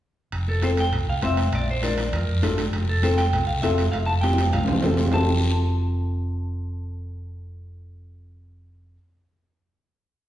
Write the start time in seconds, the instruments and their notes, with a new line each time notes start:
0.32 fingered electric bass F1, high timbale, long guiro
0.48 clean electric guitar A4, high conga
0.62 nylon-string guitar C4 F4 A4, clean electric guitar C5, high conga, high timbale, short guiro
0.77 clean electric guitar G5, high timbale, short guiro
0.92 fingered electric bass C2, high timbale, long guiro
1.07 fingered electric bass C2, clean electric guitar F5
1.22 fingered electric bass F1, nylon-string guitar C4 F4 C5, clean electric guitar E5, high conga, high timbale, short guiro
1.37 high timbale, short guiro
1.52 fingered electric bass A#1, clean electric guitar D5, high timbale, long guiro
1.68 clean electric guitar C5, high conga
1.82 nylon-string guitar D4 F4 A#4, clean electric guitar D5, high conga, high timbale, short guiro
1.98 high timbale, short guiro
2.12 fingered electric bass F2, clean electric guitar A#4, high timbale, long guiro
2.28 fingered electric bass F2
2.42 fingered electric bass G1, nylon-string guitar D4 F4 A4, high conga, high timbale, low timbale, short guiro
2.58 high timbale, short guiro
2.73 fingered electric bass F1, high timbale, long guiro
2.89 clean electric guitar A4
3.02 nylon-string guitar C4 F4 A4, clean electric guitar C5, high conga, high timbale, short guiro
3.18 clean electric guitar G5, high timbale, short guiro
3.33 fingered electric bass C2, high timbale, long guiro
3.47 fingered electric bass C2, clean electric guitar F5
3.62 fingered electric bass F1, nylon-string guitar C4 F4 A4, clean electric guitar E5, high conga, high timbale, low timbale, short guiro
3.78 high timbale, short guiro
3.92 fingered electric bass F1, clean electric guitar F5, high timbale, long guiro
4.06 clean electric guitar A5, high conga
4.21 nylon-string guitar C4 F4 G4, clean electric guitar G5, high conga, high timbale, short guiro
4.33 high conga
4.38 high timbale, short guiro
4.44 high conga
4.53 fingered electric bass C2, clean electric guitar F5, high conga, high timbale, long guiro
4.63 low conga
4.67 fingered electric bass C2, high timbale
4.73 low conga
4.82 fingered electric bass F1, nylon-string guitar C4 F4 A4, low conga, low timbale, short guiro
4.97 low timbale, short guiro
5.03 low conga
5.10 fingered electric bass F1, nylon-string guitar C4 F4, clean electric guitar A5, low conga, low timbale, long guiro
5.14 nylon-string guitar A4